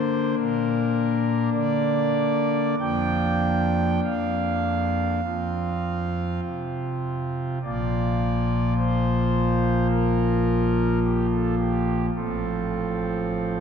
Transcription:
Already playing: D3 A#3 D4 C5
0.38 A#2 A#4
1.53 D3 D5
2.80 F2 F3 A#3 D4 G5
4.04 F2 F5
5.24 F2 F3 C4 F4
6.45 C3
7.63 A#1 A#2 F3 A#3 F4 D5
8.78 C5
9.91 A#4
11.03 G4
11.32 A4
11.59 G4
12.15 A1 A2 F3 C4 F4 A4

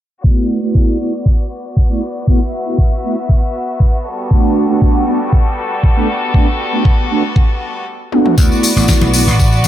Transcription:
0.24 A3 B3 E4 F#4 D5, kick
0.62 A3 B3 E4 F#4
0.75 kick
1.00 A3 B3 E4 F#4
1.26 kick
1.77 kick
1.89 A3 B3 E4 B4
2.27 A3 B3 E4 F#4 E5, kick
2.65 A3 B3 E4 F#4
2.78 kick
3.03 A3 B3 E4 F#4
3.29 kick
3.80 kick
4.05 G3 A4
4.30 A3 B3 D4 F#4, kick
4.69 A3 B3 D4 F#4
4.82 kick
5.07 A3 B3 D4 F#4
5.33 kick
5.83 kick
5.96 A3 B3 D4 A4
6.34 A3 B3 D4 F#4, kick
6.72 A3 B3 D4 F#4
6.85 kick
7.10 A3 B3 D4 F#4
7.36 kick
8.12 A3 B3 D4 F#4, high tom
8.26 mid tom
8.37 D2 A3 B3 E4 F#4 D5, kick, tambourine
8.52 tambourine
8.63 open hi-hat, tambourine
8.75 A1 A3 B3 E4 F#4, tambourine
8.88 kick, snare, tambourine
9.01 B1, tambourine, muted conga
9.13 A3 B3 E4 F#4, open hi-hat, tambourine
9.27 A1, tambourine
9.39 kick, tambourine
9.52 tambourine
9.64 B1, tambourine, muted conga, high conga

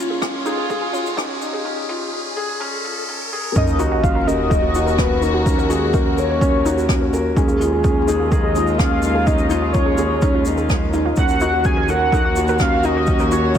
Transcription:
Already playing: D#3 A#3 C#4 C#5, riser
0.00 F4
0.08 F4 G#4
0.13 G#3
0.22 C#4, kick, cross-stick, shaker
0.46 D#4 G#4, shaker
0.58 F4
0.70 G#4, kick, shaker
0.81 G#4
0.93 C#4 F4, shaker
1.06 shaker
1.17 C#4 D#4, kick, cross-stick, shaker
1.29 F4
1.41 D#4, shaker
1.53 G#4
1.65 C#4
1.89 F4
2.13 C#4
2.37 G#4
2.60 C#4
2.85 F4
3.08 C#4
3.33 G#4
3.56 D#2 C#4 D#5, kick, sub drop, shaker
3.67 shaker
3.79 D#4 F#4, shaker
3.91 A#3 F#4
3.98 F#4
4.04 C#4 F5, kick, shaker
4.15 A#4
4.27 C#4 A#4 D#5, shaker
4.50 D#4 A#4, kick, shaker
4.62 F#4
4.75 F#4, shaker
4.86 A#4, shaker
4.98 C#4 B4, kick, cross-stick, shaker
5.22 D#4 A#4, shaker
5.34 F#4
5.46 C#4, kick, shaker
5.58 A#4, shaker
5.70 C#4 F#4 G#4, shaker
5.93 C#4 D#4 A#4, kick, shaker
6.06 F#4
6.18 A#4 C#5, shaker
6.30 A#4
6.41 C#4, kick, shaker
6.65 D#4 F#4, shaker
6.78 F#4, shaker
6.89 C#4, kick, cross-stick, shaker
7.01 A#4
7.13 C#4 A#4, shaker
7.37 D#2 C#4 D#4 G#4, kick, shaker
7.48 F4, shaker
7.57 G#3 F4
7.61 F4, shaker
7.72 G#4
7.84 C#4, kick, shaker
8.08 D#4 G#4, shaker
8.20 F4
8.31 G#4 D#5, kick, shaker
8.44 G#4
8.55 C#4 F4, shaker
8.67 shaker
8.78 C#4 D#4 F5, kick, cross-stick, shaker
8.91 F4
9.02 D#4, shaker
9.15 G#4
9.26 C#4 D#5, kick, shaker
9.38 shaker
9.50 D#4 F4, shaker
9.62 F4
9.73 C#4 C#5, kick, shaker
9.86 G#4
9.98 C#4 G#4, shaker
10.22 C#4 D#4, kick, shaker
10.35 F4
10.45 D#4, shaker
10.57 G#4, shaker
10.69 C#4 D#4, kick, cross-stick, shaker
10.93 D#4, shaker
11.05 F4
11.16 D#2 D#3 C#4 F#5, kick, shaker
11.25 A#3, shaker
11.40 D#4 F#4, shaker
11.53 F#4
11.64 C#4 G#5, kick, shaker
11.77 A#4
11.88 C#4 A#4 F#5, shaker
11.97 F#4
12.12 D#4 A#4, kick, shaker
12.25 F#4
12.36 F#4, shaker
12.47 A#4, shaker
12.58 C#4 F5, kick, cross-stick, shaker
12.83 C#4 D#4 D#5, shaker
12.97 F#4
13.06 C#4, kick, shaker
13.19 A#4, shaker
13.31 C#4 F#4 C#5, shaker
13.55 shaker

